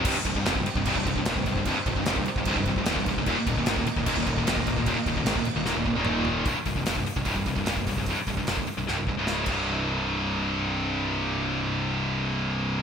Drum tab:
CC |x-x-x-x-x-x-x-x-|x-x-x-x-x-x-x-x-|x-x-x-x-x-x-x-x-|x-x-x-x---------|
HH |----------------|----------------|----------------|----------------|
SD |----o-------o---|----o-------o---|----o-------o---|----o---o-------|
T2 |----------------|----------------|----------------|------------o---|
FT |----------------|----------------|----------------|--------------o-|
BD |o-oo-o-ooooo-ooo|o-oo-o-ooooo-ooo|o-oo-o-ooooo-ooo|o-oo-o----o-----|

CC |----------------|--------------x-|----------------|----------------|
HH |o-o-o-o-o-o-o-o-|o-o-o-o---------|----------------|----------------|
SD |----o-------o---|----o---o---o---|----------------|----------------|
T2 |----------------|----------------|----------------|----------------|
FT |----------------|----------------|----------------|----------------|
BD |o-oo-o-ooooo-ooo|o-oo-o----o---o-|----------------|----------------|